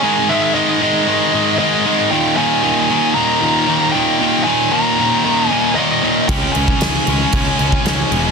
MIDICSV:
0, 0, Header, 1, 5, 480
1, 0, Start_track
1, 0, Tempo, 521286
1, 29, Time_signature, 4, 2, 24, 8
1, 7655, End_track
2, 0, Start_track
2, 0, Title_t, "Lead electric guitar"
2, 0, Program_c, 0, 29
2, 0, Note_on_c, 0, 80, 110
2, 269, Note_on_c, 0, 76, 92
2, 279, Note_off_c, 0, 80, 0
2, 492, Note_off_c, 0, 76, 0
2, 499, Note_on_c, 0, 75, 99
2, 1450, Note_off_c, 0, 75, 0
2, 1461, Note_on_c, 0, 75, 97
2, 1911, Note_off_c, 0, 75, 0
2, 1940, Note_on_c, 0, 79, 110
2, 2167, Note_off_c, 0, 79, 0
2, 2175, Note_on_c, 0, 80, 109
2, 2865, Note_off_c, 0, 80, 0
2, 2893, Note_on_c, 0, 82, 94
2, 3584, Note_off_c, 0, 82, 0
2, 3611, Note_on_c, 0, 79, 101
2, 4066, Note_off_c, 0, 79, 0
2, 4085, Note_on_c, 0, 80, 101
2, 4345, Note_off_c, 0, 80, 0
2, 4347, Note_on_c, 0, 82, 113
2, 5037, Note_off_c, 0, 82, 0
2, 5037, Note_on_c, 0, 80, 113
2, 5296, Note_on_c, 0, 75, 86
2, 5337, Note_off_c, 0, 80, 0
2, 5783, Note_on_c, 0, 79, 101
2, 5797, Note_off_c, 0, 75, 0
2, 6006, Note_off_c, 0, 79, 0
2, 6010, Note_on_c, 0, 80, 100
2, 7655, Note_off_c, 0, 80, 0
2, 7655, End_track
3, 0, Start_track
3, 0, Title_t, "Distorted electric guitar"
3, 0, Program_c, 1, 30
3, 29, Note_on_c, 1, 44, 93
3, 34, Note_on_c, 1, 51, 120
3, 40, Note_on_c, 1, 56, 111
3, 266, Note_off_c, 1, 44, 0
3, 273, Note_off_c, 1, 51, 0
3, 273, Note_off_c, 1, 56, 0
3, 277, Note_on_c, 1, 44, 97
3, 284, Note_on_c, 1, 51, 106
3, 285, Note_on_c, 1, 56, 103
3, 495, Note_off_c, 1, 44, 0
3, 501, Note_off_c, 1, 51, 0
3, 505, Note_off_c, 1, 56, 0
3, 506, Note_on_c, 1, 44, 96
3, 512, Note_on_c, 1, 51, 114
3, 516, Note_on_c, 1, 56, 98
3, 741, Note_off_c, 1, 44, 0
3, 747, Note_off_c, 1, 51, 0
3, 751, Note_off_c, 1, 56, 0
3, 752, Note_on_c, 1, 44, 92
3, 758, Note_on_c, 1, 51, 92
3, 763, Note_on_c, 1, 56, 98
3, 972, Note_off_c, 1, 44, 0
3, 975, Note_off_c, 1, 51, 0
3, 983, Note_on_c, 1, 44, 85
3, 984, Note_off_c, 1, 56, 0
3, 987, Note_on_c, 1, 51, 91
3, 995, Note_on_c, 1, 56, 98
3, 1214, Note_off_c, 1, 44, 0
3, 1219, Note_off_c, 1, 51, 0
3, 1225, Note_off_c, 1, 56, 0
3, 1225, Note_on_c, 1, 44, 99
3, 1230, Note_on_c, 1, 51, 107
3, 1236, Note_on_c, 1, 56, 119
3, 1450, Note_off_c, 1, 44, 0
3, 1458, Note_off_c, 1, 51, 0
3, 1461, Note_on_c, 1, 44, 86
3, 1463, Note_off_c, 1, 56, 0
3, 1469, Note_on_c, 1, 51, 84
3, 1474, Note_on_c, 1, 56, 86
3, 1693, Note_off_c, 1, 44, 0
3, 1699, Note_off_c, 1, 51, 0
3, 1701, Note_off_c, 1, 56, 0
3, 1704, Note_on_c, 1, 44, 85
3, 1710, Note_on_c, 1, 51, 97
3, 1712, Note_on_c, 1, 56, 104
3, 1932, Note_off_c, 1, 44, 0
3, 1935, Note_off_c, 1, 51, 0
3, 1936, Note_off_c, 1, 56, 0
3, 1941, Note_on_c, 1, 39, 110
3, 1947, Note_on_c, 1, 46, 118
3, 1953, Note_on_c, 1, 51, 112
3, 2172, Note_off_c, 1, 46, 0
3, 2175, Note_off_c, 1, 39, 0
3, 2178, Note_on_c, 1, 39, 100
3, 2183, Note_off_c, 1, 51, 0
3, 2183, Note_on_c, 1, 46, 99
3, 2187, Note_on_c, 1, 51, 105
3, 2411, Note_off_c, 1, 46, 0
3, 2416, Note_off_c, 1, 39, 0
3, 2419, Note_on_c, 1, 39, 109
3, 2422, Note_on_c, 1, 46, 100
3, 2426, Note_off_c, 1, 51, 0
3, 2429, Note_on_c, 1, 51, 117
3, 2658, Note_off_c, 1, 46, 0
3, 2660, Note_off_c, 1, 39, 0
3, 2664, Note_on_c, 1, 39, 85
3, 2669, Note_off_c, 1, 51, 0
3, 2669, Note_on_c, 1, 46, 104
3, 2673, Note_on_c, 1, 51, 104
3, 2890, Note_off_c, 1, 39, 0
3, 2897, Note_off_c, 1, 46, 0
3, 2901, Note_off_c, 1, 51, 0
3, 2901, Note_on_c, 1, 39, 84
3, 2908, Note_on_c, 1, 46, 92
3, 2912, Note_on_c, 1, 51, 108
3, 3131, Note_off_c, 1, 39, 0
3, 3137, Note_off_c, 1, 46, 0
3, 3140, Note_off_c, 1, 51, 0
3, 3142, Note_on_c, 1, 39, 98
3, 3148, Note_on_c, 1, 46, 101
3, 3151, Note_on_c, 1, 51, 115
3, 3370, Note_off_c, 1, 39, 0
3, 3376, Note_off_c, 1, 46, 0
3, 3382, Note_on_c, 1, 39, 90
3, 3383, Note_off_c, 1, 51, 0
3, 3387, Note_on_c, 1, 46, 87
3, 3394, Note_on_c, 1, 51, 95
3, 3620, Note_off_c, 1, 39, 0
3, 3622, Note_off_c, 1, 46, 0
3, 3626, Note_off_c, 1, 51, 0
3, 3631, Note_on_c, 1, 39, 86
3, 3633, Note_on_c, 1, 46, 89
3, 3637, Note_on_c, 1, 51, 113
3, 3854, Note_off_c, 1, 39, 0
3, 3862, Note_off_c, 1, 46, 0
3, 3863, Note_off_c, 1, 51, 0
3, 3865, Note_on_c, 1, 39, 102
3, 3873, Note_on_c, 1, 46, 127
3, 3874, Note_on_c, 1, 51, 123
3, 4097, Note_off_c, 1, 39, 0
3, 4103, Note_off_c, 1, 46, 0
3, 4107, Note_off_c, 1, 51, 0
3, 4108, Note_on_c, 1, 39, 100
3, 4114, Note_on_c, 1, 46, 96
3, 4118, Note_on_c, 1, 51, 105
3, 4335, Note_off_c, 1, 39, 0
3, 4342, Note_off_c, 1, 46, 0
3, 4346, Note_off_c, 1, 51, 0
3, 4346, Note_on_c, 1, 39, 108
3, 4353, Note_on_c, 1, 46, 101
3, 4357, Note_on_c, 1, 51, 102
3, 4585, Note_off_c, 1, 39, 0
3, 4588, Note_off_c, 1, 46, 0
3, 4594, Note_off_c, 1, 51, 0
3, 4596, Note_on_c, 1, 39, 91
3, 4599, Note_on_c, 1, 46, 83
3, 4605, Note_on_c, 1, 51, 102
3, 4819, Note_off_c, 1, 39, 0
3, 4823, Note_off_c, 1, 46, 0
3, 4828, Note_off_c, 1, 51, 0
3, 4830, Note_on_c, 1, 39, 87
3, 4834, Note_on_c, 1, 46, 95
3, 4839, Note_on_c, 1, 51, 93
3, 5060, Note_off_c, 1, 39, 0
3, 5063, Note_off_c, 1, 46, 0
3, 5070, Note_off_c, 1, 51, 0
3, 5071, Note_on_c, 1, 39, 101
3, 5074, Note_on_c, 1, 46, 112
3, 5081, Note_on_c, 1, 51, 107
3, 5299, Note_off_c, 1, 39, 0
3, 5305, Note_off_c, 1, 46, 0
3, 5310, Note_on_c, 1, 39, 89
3, 5312, Note_off_c, 1, 51, 0
3, 5316, Note_on_c, 1, 46, 79
3, 5323, Note_on_c, 1, 51, 91
3, 5538, Note_off_c, 1, 39, 0
3, 5546, Note_off_c, 1, 46, 0
3, 5548, Note_off_c, 1, 51, 0
3, 5549, Note_on_c, 1, 39, 101
3, 5557, Note_on_c, 1, 46, 88
3, 5559, Note_on_c, 1, 51, 101
3, 5775, Note_off_c, 1, 39, 0
3, 5779, Note_off_c, 1, 46, 0
3, 5780, Note_off_c, 1, 51, 0
3, 5794, Note_on_c, 1, 49, 113
3, 5802, Note_on_c, 1, 56, 124
3, 5804, Note_on_c, 1, 61, 120
3, 6027, Note_off_c, 1, 49, 0
3, 6038, Note_on_c, 1, 49, 101
3, 6039, Note_off_c, 1, 56, 0
3, 6039, Note_off_c, 1, 61, 0
3, 6043, Note_on_c, 1, 56, 100
3, 6050, Note_on_c, 1, 61, 102
3, 6266, Note_off_c, 1, 49, 0
3, 6274, Note_off_c, 1, 61, 0
3, 6276, Note_off_c, 1, 56, 0
3, 6277, Note_on_c, 1, 49, 99
3, 6280, Note_on_c, 1, 56, 108
3, 6285, Note_on_c, 1, 61, 98
3, 6513, Note_off_c, 1, 49, 0
3, 6520, Note_off_c, 1, 61, 0
3, 6524, Note_on_c, 1, 49, 84
3, 6525, Note_off_c, 1, 56, 0
3, 6529, Note_on_c, 1, 56, 84
3, 6531, Note_on_c, 1, 61, 101
3, 6751, Note_off_c, 1, 49, 0
3, 6757, Note_off_c, 1, 56, 0
3, 6762, Note_on_c, 1, 49, 89
3, 6763, Note_off_c, 1, 61, 0
3, 6768, Note_on_c, 1, 56, 101
3, 6774, Note_on_c, 1, 61, 95
3, 6983, Note_off_c, 1, 49, 0
3, 6989, Note_off_c, 1, 56, 0
3, 6992, Note_off_c, 1, 61, 0
3, 6994, Note_on_c, 1, 49, 92
3, 7000, Note_on_c, 1, 56, 94
3, 7003, Note_on_c, 1, 61, 104
3, 7218, Note_off_c, 1, 49, 0
3, 7226, Note_off_c, 1, 56, 0
3, 7228, Note_off_c, 1, 61, 0
3, 7229, Note_on_c, 1, 49, 78
3, 7237, Note_on_c, 1, 56, 85
3, 7239, Note_on_c, 1, 61, 90
3, 7456, Note_off_c, 1, 49, 0
3, 7462, Note_off_c, 1, 56, 0
3, 7467, Note_off_c, 1, 61, 0
3, 7467, Note_on_c, 1, 49, 84
3, 7473, Note_on_c, 1, 56, 97
3, 7478, Note_on_c, 1, 61, 91
3, 7655, Note_off_c, 1, 49, 0
3, 7655, Note_off_c, 1, 56, 0
3, 7655, Note_off_c, 1, 61, 0
3, 7655, End_track
4, 0, Start_track
4, 0, Title_t, "Picked electric bass"
4, 0, Program_c, 2, 34
4, 5790, Note_on_c, 2, 37, 102
4, 5947, Note_off_c, 2, 37, 0
4, 6041, Note_on_c, 2, 37, 100
4, 6194, Note_off_c, 2, 37, 0
4, 6274, Note_on_c, 2, 37, 107
4, 6430, Note_off_c, 2, 37, 0
4, 6516, Note_on_c, 2, 37, 104
4, 6671, Note_off_c, 2, 37, 0
4, 6751, Note_on_c, 2, 37, 106
4, 6907, Note_off_c, 2, 37, 0
4, 6989, Note_on_c, 2, 37, 92
4, 7146, Note_off_c, 2, 37, 0
4, 7228, Note_on_c, 2, 37, 85
4, 7385, Note_off_c, 2, 37, 0
4, 7474, Note_on_c, 2, 28, 104
4, 7629, Note_off_c, 2, 28, 0
4, 7655, End_track
5, 0, Start_track
5, 0, Title_t, "Drums"
5, 5792, Note_on_c, 9, 36, 122
5, 5792, Note_on_c, 9, 49, 89
5, 5884, Note_off_c, 9, 36, 0
5, 5885, Note_off_c, 9, 49, 0
5, 6029, Note_on_c, 9, 49, 67
5, 6121, Note_off_c, 9, 49, 0
5, 6150, Note_on_c, 9, 36, 93
5, 6242, Note_off_c, 9, 36, 0
5, 6268, Note_on_c, 9, 49, 93
5, 6277, Note_on_c, 9, 38, 123
5, 6360, Note_off_c, 9, 49, 0
5, 6369, Note_off_c, 9, 38, 0
5, 6509, Note_on_c, 9, 49, 64
5, 6601, Note_off_c, 9, 49, 0
5, 6745, Note_on_c, 9, 49, 90
5, 6751, Note_on_c, 9, 36, 116
5, 6837, Note_off_c, 9, 49, 0
5, 6843, Note_off_c, 9, 36, 0
5, 6990, Note_on_c, 9, 49, 53
5, 7082, Note_off_c, 9, 49, 0
5, 7112, Note_on_c, 9, 36, 84
5, 7204, Note_off_c, 9, 36, 0
5, 7233, Note_on_c, 9, 49, 87
5, 7243, Note_on_c, 9, 38, 127
5, 7326, Note_off_c, 9, 49, 0
5, 7335, Note_off_c, 9, 38, 0
5, 7475, Note_on_c, 9, 49, 68
5, 7567, Note_off_c, 9, 49, 0
5, 7655, End_track
0, 0, End_of_file